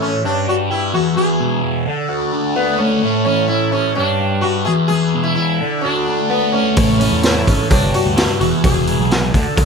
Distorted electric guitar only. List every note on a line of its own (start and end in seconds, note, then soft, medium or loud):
0.00 0.23 A2 medium
0.00 0.23 E3 medium
0.00 0.23 C#4 medium
0.23 0.93 G2 medium
0.47 0.94 D4 medium
0.70 0.93 G4 medium
0.94 1.16 E2 medium
1.17 1.87 E2 medium
1.40 1.86 B2 medium
1.62 1.86 E3 medium
1.86 3.03 D3 medium
2.09 2.54 F#4 medium
2.32 3.03 D4 medium
2.56 3.03 F#4 medium
2.79 3.03 A3 medium
3.02 3.96 A2 medium
3.26 3.48 E3 medium
3.49 3.96 E3 medium
3.73 3.96 C#4 medium
3.96 4.66 G2 medium
4.20 4.66 D4 medium
4.43 4.66 G4 medium
4.67 4.89 E2 medium
4.91 5.60 E2 medium
5.14 5.60 B2 medium
5.37 5.60 E3 medium
5.61 6.77 D3 medium
5.85 6.29 F#4 medium
6.08 6.77 D4 medium
6.31 6.77 F#4 medium
6.54 6.77 A3 medium
6.78 7.71 A2 medium
7.01 7.23 E3 medium
7.24 7.70 E3 medium
7.48 7.71 C#4 medium
7.71 8.41 G2 medium
7.94 8.40 D4 medium
8.17 8.40 G4 medium
8.41 8.63 E2 medium
8.64 9.34 E2 medium
8.87 9.34 B2 medium
9.10 9.33 E3 medium
9.34 9.65 D3 medium
9.56 9.65 F#4 medium